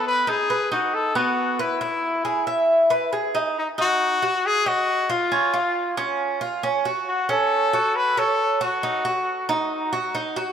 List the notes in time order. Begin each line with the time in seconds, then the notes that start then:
Already playing: B3
0.07 B4
0.27 D#4 G#4
0.50 B4
0.72 D#4 F#4
0.94 A4
1.15 B3 F#4
1.59 E4 B4
1.81 E4
2.25 G#4
2.47 E5
2.90 B4
3.13 G#4
3.35 D#4
3.59 D#4
3.78 D#4 F#4
4.22 F#4
4.46 G#4
4.66 F#4 D#5
5.10 F4
5.32 C#4
5.54 F4
5.97 C#4
6.41 F4
6.63 C#4
6.85 F#4
7.08 F#4
7.29 C#4 A4
7.73 F#4
7.96 B4
8.17 A4 C#5
8.61 F#4
8.83 D#4
9.05 F#4
9.49 D#4
9.93 F#4
10.15 D#4
10.36 F#4